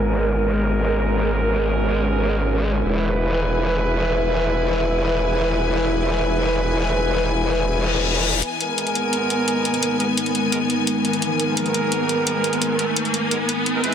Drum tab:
HH |----------------|----------------|----------------|----------------|

HH |----------------|----------------|x-x-xxx-x-x-x-xx|x-x-xxx-x-x-x-xx|

HH |x-x-xxx-x-x-x-xx|x-x-xxx-x-x-x-x-|